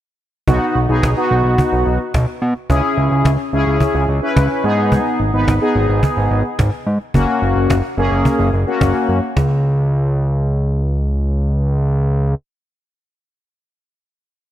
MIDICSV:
0, 0, Header, 1, 4, 480
1, 0, Start_track
1, 0, Tempo, 555556
1, 411, Time_signature, 4, 2, 24, 8
1, 12537, End_track
2, 0, Start_track
2, 0, Title_t, "Analog polysynth"
2, 0, Program_c, 0, 90
2, 410, Note_on_c, 0, 59, 85
2, 410, Note_on_c, 0, 63, 76
2, 410, Note_on_c, 0, 66, 92
2, 675, Note_off_c, 0, 59, 0
2, 675, Note_off_c, 0, 63, 0
2, 675, Note_off_c, 0, 66, 0
2, 770, Note_on_c, 0, 59, 83
2, 770, Note_on_c, 0, 63, 78
2, 771, Note_on_c, 0, 68, 95
2, 947, Note_off_c, 0, 59, 0
2, 947, Note_off_c, 0, 63, 0
2, 947, Note_off_c, 0, 68, 0
2, 1009, Note_on_c, 0, 59, 83
2, 1009, Note_on_c, 0, 63, 77
2, 1009, Note_on_c, 0, 66, 92
2, 1714, Note_off_c, 0, 59, 0
2, 1714, Note_off_c, 0, 63, 0
2, 1714, Note_off_c, 0, 66, 0
2, 2329, Note_on_c, 0, 61, 84
2, 2329, Note_on_c, 0, 64, 76
2, 2329, Note_on_c, 0, 68, 94
2, 2858, Note_off_c, 0, 61, 0
2, 2858, Note_off_c, 0, 64, 0
2, 2858, Note_off_c, 0, 68, 0
2, 3048, Note_on_c, 0, 61, 85
2, 3048, Note_on_c, 0, 64, 78
2, 3048, Note_on_c, 0, 68, 94
2, 3490, Note_off_c, 0, 61, 0
2, 3490, Note_off_c, 0, 64, 0
2, 3490, Note_off_c, 0, 68, 0
2, 3648, Note_on_c, 0, 61, 85
2, 3648, Note_on_c, 0, 64, 77
2, 3648, Note_on_c, 0, 71, 95
2, 4010, Note_off_c, 0, 61, 0
2, 4010, Note_off_c, 0, 64, 0
2, 4010, Note_off_c, 0, 71, 0
2, 4010, Note_on_c, 0, 59, 92
2, 4010, Note_on_c, 0, 63, 83
2, 4010, Note_on_c, 0, 68, 100
2, 4490, Note_off_c, 0, 59, 0
2, 4490, Note_off_c, 0, 63, 0
2, 4491, Note_off_c, 0, 68, 0
2, 4609, Note_on_c, 0, 59, 87
2, 4609, Note_on_c, 0, 63, 78
2, 4609, Note_on_c, 0, 71, 93
2, 4786, Note_off_c, 0, 59, 0
2, 4786, Note_off_c, 0, 63, 0
2, 4786, Note_off_c, 0, 71, 0
2, 4849, Note_on_c, 0, 59, 86
2, 4849, Note_on_c, 0, 63, 76
2, 4849, Note_on_c, 0, 68, 96
2, 5554, Note_off_c, 0, 59, 0
2, 5554, Note_off_c, 0, 63, 0
2, 5554, Note_off_c, 0, 68, 0
2, 6170, Note_on_c, 0, 58, 84
2, 6170, Note_on_c, 0, 61, 76
2, 6170, Note_on_c, 0, 66, 93
2, 6699, Note_off_c, 0, 58, 0
2, 6699, Note_off_c, 0, 61, 0
2, 6699, Note_off_c, 0, 66, 0
2, 6892, Note_on_c, 0, 58, 88
2, 6892, Note_on_c, 0, 61, 80
2, 6892, Note_on_c, 0, 68, 96
2, 7331, Note_off_c, 0, 58, 0
2, 7332, Note_off_c, 0, 61, 0
2, 7332, Note_off_c, 0, 68, 0
2, 7490, Note_on_c, 0, 58, 84
2, 7490, Note_on_c, 0, 61, 79
2, 7491, Note_on_c, 0, 66, 91
2, 7930, Note_off_c, 0, 61, 0
2, 7931, Note_off_c, 0, 58, 0
2, 7931, Note_off_c, 0, 66, 0
2, 12537, End_track
3, 0, Start_track
3, 0, Title_t, "Analog synth bass"
3, 0, Program_c, 1, 38
3, 411, Note_on_c, 1, 35, 110
3, 514, Note_off_c, 1, 35, 0
3, 651, Note_on_c, 1, 35, 87
3, 754, Note_off_c, 1, 35, 0
3, 771, Note_on_c, 1, 35, 96
3, 874, Note_off_c, 1, 35, 0
3, 890, Note_on_c, 1, 35, 102
3, 994, Note_off_c, 1, 35, 0
3, 1130, Note_on_c, 1, 35, 107
3, 1234, Note_off_c, 1, 35, 0
3, 1250, Note_on_c, 1, 35, 91
3, 1354, Note_off_c, 1, 35, 0
3, 1490, Note_on_c, 1, 35, 93
3, 1594, Note_off_c, 1, 35, 0
3, 1610, Note_on_c, 1, 35, 96
3, 1714, Note_off_c, 1, 35, 0
3, 1850, Note_on_c, 1, 35, 98
3, 1954, Note_off_c, 1, 35, 0
3, 2089, Note_on_c, 1, 47, 94
3, 2193, Note_off_c, 1, 47, 0
3, 2329, Note_on_c, 1, 37, 106
3, 2433, Note_off_c, 1, 37, 0
3, 2569, Note_on_c, 1, 37, 104
3, 2673, Note_off_c, 1, 37, 0
3, 2690, Note_on_c, 1, 37, 95
3, 2793, Note_off_c, 1, 37, 0
3, 2809, Note_on_c, 1, 37, 96
3, 2913, Note_off_c, 1, 37, 0
3, 3050, Note_on_c, 1, 37, 102
3, 3154, Note_off_c, 1, 37, 0
3, 3171, Note_on_c, 1, 37, 93
3, 3274, Note_off_c, 1, 37, 0
3, 3410, Note_on_c, 1, 37, 98
3, 3514, Note_off_c, 1, 37, 0
3, 3529, Note_on_c, 1, 37, 98
3, 3633, Note_off_c, 1, 37, 0
3, 3770, Note_on_c, 1, 37, 92
3, 3874, Note_off_c, 1, 37, 0
3, 4010, Note_on_c, 1, 44, 100
3, 4320, Note_off_c, 1, 44, 0
3, 4491, Note_on_c, 1, 32, 98
3, 4594, Note_off_c, 1, 32, 0
3, 4611, Note_on_c, 1, 32, 98
3, 4714, Note_off_c, 1, 32, 0
3, 4730, Note_on_c, 1, 32, 102
3, 4834, Note_off_c, 1, 32, 0
3, 4972, Note_on_c, 1, 32, 104
3, 5075, Note_off_c, 1, 32, 0
3, 5092, Note_on_c, 1, 32, 107
3, 5195, Note_off_c, 1, 32, 0
3, 5332, Note_on_c, 1, 32, 93
3, 5435, Note_off_c, 1, 32, 0
3, 5451, Note_on_c, 1, 32, 104
3, 5554, Note_off_c, 1, 32, 0
3, 5692, Note_on_c, 1, 32, 98
3, 5795, Note_off_c, 1, 32, 0
3, 5931, Note_on_c, 1, 44, 101
3, 6034, Note_off_c, 1, 44, 0
3, 6172, Note_on_c, 1, 30, 104
3, 6275, Note_off_c, 1, 30, 0
3, 6411, Note_on_c, 1, 30, 96
3, 6514, Note_off_c, 1, 30, 0
3, 6531, Note_on_c, 1, 30, 92
3, 6634, Note_off_c, 1, 30, 0
3, 6652, Note_on_c, 1, 30, 94
3, 6755, Note_off_c, 1, 30, 0
3, 6891, Note_on_c, 1, 30, 103
3, 6994, Note_off_c, 1, 30, 0
3, 7011, Note_on_c, 1, 30, 94
3, 7114, Note_off_c, 1, 30, 0
3, 7250, Note_on_c, 1, 30, 99
3, 7354, Note_off_c, 1, 30, 0
3, 7372, Note_on_c, 1, 30, 99
3, 7475, Note_off_c, 1, 30, 0
3, 7612, Note_on_c, 1, 30, 104
3, 7715, Note_off_c, 1, 30, 0
3, 7850, Note_on_c, 1, 42, 94
3, 7954, Note_off_c, 1, 42, 0
3, 8090, Note_on_c, 1, 37, 98
3, 10667, Note_off_c, 1, 37, 0
3, 12537, End_track
4, 0, Start_track
4, 0, Title_t, "Cajon"
4, 411, Note_on_c, 9, 36, 109
4, 497, Note_off_c, 9, 36, 0
4, 653, Note_on_c, 9, 38, 39
4, 739, Note_off_c, 9, 38, 0
4, 770, Note_on_c, 9, 38, 29
4, 856, Note_off_c, 9, 38, 0
4, 890, Note_on_c, 9, 36, 107
4, 894, Note_on_c, 9, 38, 110
4, 977, Note_off_c, 9, 36, 0
4, 980, Note_off_c, 9, 38, 0
4, 1134, Note_on_c, 9, 38, 40
4, 1220, Note_off_c, 9, 38, 0
4, 1252, Note_on_c, 9, 38, 28
4, 1339, Note_off_c, 9, 38, 0
4, 1368, Note_on_c, 9, 36, 114
4, 1454, Note_off_c, 9, 36, 0
4, 1611, Note_on_c, 9, 38, 33
4, 1697, Note_off_c, 9, 38, 0
4, 1732, Note_on_c, 9, 38, 31
4, 1818, Note_off_c, 9, 38, 0
4, 1851, Note_on_c, 9, 36, 117
4, 1852, Note_on_c, 9, 38, 106
4, 1937, Note_off_c, 9, 36, 0
4, 1938, Note_off_c, 9, 38, 0
4, 2094, Note_on_c, 9, 38, 39
4, 2180, Note_off_c, 9, 38, 0
4, 2211, Note_on_c, 9, 38, 25
4, 2298, Note_off_c, 9, 38, 0
4, 2330, Note_on_c, 9, 36, 108
4, 2416, Note_off_c, 9, 36, 0
4, 2572, Note_on_c, 9, 38, 37
4, 2659, Note_off_c, 9, 38, 0
4, 2688, Note_on_c, 9, 38, 29
4, 2775, Note_off_c, 9, 38, 0
4, 2809, Note_on_c, 9, 36, 109
4, 2813, Note_on_c, 9, 38, 111
4, 2895, Note_off_c, 9, 36, 0
4, 2899, Note_off_c, 9, 38, 0
4, 3052, Note_on_c, 9, 38, 40
4, 3138, Note_off_c, 9, 38, 0
4, 3170, Note_on_c, 9, 38, 28
4, 3257, Note_off_c, 9, 38, 0
4, 3287, Note_on_c, 9, 36, 119
4, 3374, Note_off_c, 9, 36, 0
4, 3530, Note_on_c, 9, 38, 35
4, 3616, Note_off_c, 9, 38, 0
4, 3651, Note_on_c, 9, 38, 31
4, 3738, Note_off_c, 9, 38, 0
4, 3771, Note_on_c, 9, 36, 119
4, 3772, Note_on_c, 9, 38, 114
4, 3857, Note_off_c, 9, 36, 0
4, 3859, Note_off_c, 9, 38, 0
4, 4013, Note_on_c, 9, 38, 39
4, 4099, Note_off_c, 9, 38, 0
4, 4131, Note_on_c, 9, 38, 26
4, 4217, Note_off_c, 9, 38, 0
4, 4250, Note_on_c, 9, 36, 110
4, 4336, Note_off_c, 9, 36, 0
4, 4493, Note_on_c, 9, 38, 39
4, 4579, Note_off_c, 9, 38, 0
4, 4609, Note_on_c, 9, 38, 28
4, 4696, Note_off_c, 9, 38, 0
4, 4730, Note_on_c, 9, 36, 109
4, 4734, Note_on_c, 9, 38, 113
4, 4817, Note_off_c, 9, 36, 0
4, 4821, Note_off_c, 9, 38, 0
4, 4975, Note_on_c, 9, 38, 39
4, 5061, Note_off_c, 9, 38, 0
4, 5092, Note_on_c, 9, 38, 28
4, 5178, Note_off_c, 9, 38, 0
4, 5208, Note_on_c, 9, 36, 122
4, 5295, Note_off_c, 9, 36, 0
4, 5452, Note_on_c, 9, 38, 34
4, 5538, Note_off_c, 9, 38, 0
4, 5572, Note_on_c, 9, 38, 32
4, 5659, Note_off_c, 9, 38, 0
4, 5692, Note_on_c, 9, 36, 121
4, 5693, Note_on_c, 9, 38, 108
4, 5778, Note_off_c, 9, 36, 0
4, 5779, Note_off_c, 9, 38, 0
4, 5934, Note_on_c, 9, 38, 39
4, 6021, Note_off_c, 9, 38, 0
4, 6052, Note_on_c, 9, 38, 25
4, 6138, Note_off_c, 9, 38, 0
4, 6171, Note_on_c, 9, 36, 112
4, 6258, Note_off_c, 9, 36, 0
4, 6414, Note_on_c, 9, 38, 38
4, 6500, Note_off_c, 9, 38, 0
4, 6531, Note_on_c, 9, 38, 27
4, 6617, Note_off_c, 9, 38, 0
4, 6651, Note_on_c, 9, 36, 107
4, 6656, Note_on_c, 9, 38, 112
4, 6738, Note_off_c, 9, 36, 0
4, 6742, Note_off_c, 9, 38, 0
4, 6895, Note_on_c, 9, 38, 40
4, 6981, Note_off_c, 9, 38, 0
4, 7013, Note_on_c, 9, 38, 28
4, 7099, Note_off_c, 9, 38, 0
4, 7130, Note_on_c, 9, 36, 120
4, 7216, Note_off_c, 9, 36, 0
4, 7373, Note_on_c, 9, 38, 34
4, 7460, Note_off_c, 9, 38, 0
4, 7493, Note_on_c, 9, 38, 31
4, 7580, Note_off_c, 9, 38, 0
4, 7612, Note_on_c, 9, 36, 120
4, 7614, Note_on_c, 9, 38, 109
4, 7699, Note_off_c, 9, 36, 0
4, 7700, Note_off_c, 9, 38, 0
4, 7856, Note_on_c, 9, 38, 38
4, 7942, Note_off_c, 9, 38, 0
4, 7973, Note_on_c, 9, 38, 26
4, 8059, Note_off_c, 9, 38, 0
4, 8092, Note_on_c, 9, 36, 98
4, 8092, Note_on_c, 9, 38, 101
4, 8178, Note_off_c, 9, 36, 0
4, 8178, Note_off_c, 9, 38, 0
4, 12537, End_track
0, 0, End_of_file